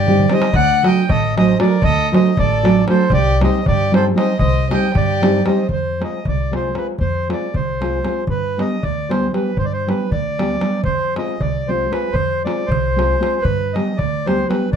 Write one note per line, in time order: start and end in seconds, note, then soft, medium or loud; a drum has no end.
0.00 0.24 G2 medium
0.00 0.27 G4 medium
0.00 0.33 D5 loud
0.07 0.23 G3 medium
0.07 0.23 C4 medium
0.07 0.24 D#4 medium
0.07 0.24 G4 medium
0.07 darbuka dum medium
0.19 darbuka dum medium
0.29 0.46 G3 medium
0.29 0.46 C4 medium
0.29 0.47 D#4 medium
0.29 0.47 G4 medium
0.29 0.53 C5 medium
0.29 darbuka tek medium
0.34 0.55 D#5 loud
0.42 darbuka tek medium
0.53 0.87 D2 loud
0.53 0.84 D5 medium
0.53 0.87 F#5 loud
0.53 darbuka dum medium
0.83 1.00 F#3 medium
0.83 1.01 A3 medium
0.83 1.01 D4 medium
0.83 1.01 F#4 medium
0.83 1.07 D#5 medium
0.83 darbuka tek medium
0.87 1.11 G5 medium
0.97 darbuka tek soft
1.09 1.54 A1 medium
1.09 1.36 A4 medium
1.09 1.35 D#5 loud
1.09 darbuka dum medium
1.24 darbuka tek soft
1.37 1.53 F#3 medium
1.37 1.53 A3 medium
1.37 1.53 D4 medium
1.37 1.53 F#4 medium
1.37 1.58 D#5 loud
1.37 darbuka tek medium
1.42 1.60 C5 medium
1.58 1.75 F#3 medium
1.58 1.75 A3 medium
1.58 1.75 D4 medium
1.58 1.75 F#4 medium
1.58 1.83 D5 medium
1.58 darbuka tek medium
1.64 1.83 A#4 medium
1.82 2.16 D2 medium
1.82 2.13 A4 loud
1.82 2.14 D#5 loud
1.82 darbuka dum medium
1.99 darbuka tek soft
2.12 2.29 F#3 medium
2.12 2.30 A3 medium
2.12 2.30 D4 medium
2.12 2.31 F#4 medium
2.12 2.37 C5 medium
2.12 2.39 D#5 medium
2.12 darbuka tek medium
2.26 darbuka tek soft
2.37 2.82 A1 medium
2.37 2.86 A4 medium
2.37 2.85 D5 loud
2.37 darbuka dum medium
2.52 darbuka tek soft
2.63 2.80 F#3 medium
2.63 2.81 A3 medium
2.63 2.81 D4 medium
2.63 2.81 F#4 medium
2.63 darbuka tek medium
2.86 3.03 F#3 medium
2.86 3.03 A3 medium
2.86 3.04 D4 medium
2.86 3.04 F#4 medium
2.86 3.10 A4 medium
2.86 3.12 C5 medium
2.86 darbuka tek medium
3.10 3.44 C2 loud
3.10 3.41 D5 loud
3.10 darbuka dum medium
3.14 3.42 G4 loud
3.27 darbuka tek soft
3.40 3.58 G3 medium
3.40 3.58 C4 medium
3.40 3.58 D#4 medium
3.40 3.59 G4 medium
3.40 3.65 D#5 medium
3.40 darbuka tek medium
3.45 3.66 C5 medium
3.55 darbuka tek soft
3.66 4.11 G2 medium
3.66 3.94 G4 medium
3.66 3.93 D5 loud
3.66 darbuka dum medium
3.81 darbuka tek soft
3.92 4.09 G3 medium
3.92 4.09 C4 medium
3.92 4.09 D#4 medium
3.92 4.10 G4 medium
3.92 4.05 C5 medium
3.92 darbuka tek medium
3.97 4.06 A4 medium
4.14 4.31 G3 medium
4.14 4.32 C4 medium
4.14 4.32 D#4 medium
4.14 4.32 G4 medium
4.14 4.38 D#5 medium
4.14 darbuka tek medium
4.19 4.39 C5 medium
4.39 4.73 C2 medium
4.39 4.69 C5 medium
4.39 4.69 D#5 loud
4.39 darbuka dum medium
4.55 darbuka tek soft
4.70 4.87 G3 medium
4.70 4.87 C4 medium
4.70 4.87 D#4 medium
4.70 4.88 G4 medium
4.70 4.93 D#5 medium
4.70 4.97 G5 medium
4.70 darbuka tek medium
4.83 darbuka tek soft
4.95 5.39 G2 medium
4.95 5.42 G4 medium
4.95 5.48 D5 medium
4.95 darbuka dum medium
5.09 darbuka tek soft
5.22 5.38 G3 medium
5.22 5.38 C4 medium
5.22 5.39 D#4 medium
5.22 5.39 G4 medium
5.22 darbuka tek medium
5.34 darbuka tek soft
5.45 5.61 G3 medium
5.45 5.61 C4 medium
5.45 5.62 D#4 medium
5.45 5.62 G4 medium
5.45 5.68 C5 medium
5.45 5.67 D#5 medium
5.45 darbuka tek medium
5.58 darbuka tek soft
5.69 6.03 F2 medium
5.69 6.03 C5 medium
5.69 darbuka dum medium
5.85 darbuka tek soft
6.00 6.17 G#3 soft
6.00 6.17 C4 soft
6.00 6.17 F4 soft
6.00 6.17 G#4 medium
6.00 darbuka tek medium
6.04 6.27 D#5 medium
6.14 darbuka tek soft
6.25 6.70 C2 medium
6.25 6.55 D5 medium
6.25 darbuka dum medium
6.39 darbuka tek soft
6.51 6.68 G#3 medium
6.51 6.68 C4 soft
6.51 6.68 F4 medium
6.51 6.69 G#4 medium
6.51 6.75 C5 medium
6.51 darbuka tek medium
6.64 darbuka tek soft
6.74 6.90 G#3 medium
6.74 6.91 C4 soft
6.74 6.91 F4 medium
6.74 6.91 G#4 medium
6.74 6.87 B4 medium
6.74 darbuka tek medium
6.98 7.33 F2 medium
6.98 7.28 C5 medium
6.98 darbuka dum medium
7.15 darbuka tek soft
7.28 7.46 G#3 medium
7.28 7.46 C4 soft
7.28 7.46 F4 medium
7.28 7.46 G#4 medium
7.28 darbuka tek medium
7.33 7.56 D5 medium
7.43 darbuka tek soft
7.54 7.99 C2 medium
7.54 8.24 C5 medium
7.54 darbuka dum medium
7.68 darbuka tek soft
7.81 7.97 G#3 medium
7.81 7.97 C4 soft
7.81 7.97 F4 medium
7.81 7.98 G#4 medium
7.81 darbuka tek medium
7.93 darbuka tek soft
8.04 8.20 G#3 medium
8.04 8.21 C4 medium
8.04 8.21 F4 medium
8.04 8.21 G#4 medium
8.04 darbuka tek medium
8.27 8.61 G2 medium
8.27 8.61 B4 medium
8.27 darbuka dum medium
8.44 darbuka tek soft
8.57 8.75 G3 medium
8.57 8.75 B3 soft
8.57 8.75 D4 medium
8.57 8.75 G4 medium
8.57 8.84 D#5 medium
8.57 darbuka tek medium
8.71 darbuka tek soft
8.83 9.27 D2 medium
8.83 9.12 D5 medium
8.83 darbuka dum medium
8.98 darbuka tek soft
9.09 9.26 G3 medium
9.09 9.26 B3 medium
9.09 9.26 D4 medium
9.09 9.27 G4 medium
9.09 9.32 C5 medium
9.09 darbuka tek medium
9.24 darbuka tek soft
9.33 9.49 G3 medium
9.33 9.49 B3 medium
9.33 9.50 D4 soft
9.33 9.50 G4 medium
9.33 9.58 B4 medium
9.33 darbuka tek medium
9.57 9.90 G2 medium
9.57 9.66 C5 medium
9.57 darbuka dum medium
9.65 9.73 D5 medium
9.73 9.89 C5 medium
9.87 10.04 G3 medium
9.87 10.04 B3 soft
9.87 10.05 D4 soft
9.87 10.05 G4 medium
9.87 10.11 B4 medium
9.87 darbuka tek medium
10.00 darbuka tek soft
10.11 10.56 D2 medium
10.11 10.81 D5 medium
10.11 darbuka dum medium
10.27 darbuka tek soft
10.38 10.55 G3 medium
10.38 10.55 B3 soft
10.38 10.56 D4 medium
10.38 10.56 G4 medium
10.38 darbuka tek medium
10.51 darbuka tek soft
10.61 10.78 G3 medium
10.61 10.78 B3 soft
10.61 10.78 D4 soft
10.61 10.78 G4 medium
10.61 darbuka tek medium
10.73 darbuka tek soft
10.84 11.19 F2 medium
10.84 11.15 C5 medium
10.84 darbuka dum medium
11.01 darbuka tek soft
11.16 11.33 G#3 medium
11.16 11.34 C4 soft
11.16 11.34 F4 medium
11.16 11.34 G#4 medium
11.16 11.42 D#5 medium
11.16 darbuka tek medium
11.28 darbuka tek soft
11.41 11.85 C2 medium
11.41 11.70 D5 medium
11.41 darbuka dum medium
11.56 darbuka tek soft
11.68 11.85 G#3 medium
11.68 11.85 C4 medium
11.68 11.85 F4 medium
11.68 11.85 G#4 medium
11.68 11.92 C5 medium
11.81 darbuka tek soft
11.90 12.07 G#3 medium
11.90 12.07 C4 soft
11.90 12.08 F4 medium
11.90 12.08 G#4 medium
11.90 12.15 B4 medium
11.90 darbuka tek medium
12.12 12.47 F2 medium
12.12 12.43 C5 medium
12.12 darbuka dum medium
12.32 darbuka tek soft
12.45 12.62 G#3 medium
12.45 12.63 C4 medium
12.45 12.63 F4 soft
12.45 12.63 G#4 medium
12.45 12.70 D5 medium
12.45 darbuka tek medium
12.60 darbuka tek soft
12.67 13.13 C2 medium
12.67 13.44 C5 medium
12.72 darbuka dum medium
12.85 darbuka tek soft
12.96 13.13 G#3 medium
12.96 13.13 C4 medium
12.96 13.14 F4 medium
12.96 13.14 G#4 medium
12.96 darbuka tek medium
13.12 darbuka tek soft
13.20 13.36 G#3 medium
13.20 13.36 C4 medium
13.20 13.37 F4 medium
13.20 13.37 G#4 medium
13.20 darbuka tek medium
13.41 13.77 G2 medium
13.41 13.75 B4 medium
13.41 darbuka dum medium
13.62 darbuka tek soft
13.73 13.92 G3 medium
13.73 13.92 B3 medium
13.73 13.92 D4 medium
13.73 13.92 G4 medium
13.73 13.99 D#5 medium
13.73 darbuka tek medium
13.88 darbuka tek soft
13.97 14.43 D2 medium
13.97 14.27 D5 medium
13.97 darbuka dum medium
14.14 darbuka tek soft
14.26 14.42 G3 medium
14.26 14.43 B3 medium
14.26 14.43 D4 medium
14.26 14.43 G4 medium
14.26 14.48 C5 medium
14.26 darbuka tek medium
14.39 darbuka tek soft
14.48 14.65 G3 medium
14.48 14.65 B3 medium
14.48 14.65 D4 medium
14.48 14.65 G4 medium
14.48 14.70 B4 medium
14.48 darbuka tek medium
14.72 14.76 F2 medium
14.72 14.76 D5 medium
14.72 darbuka dum medium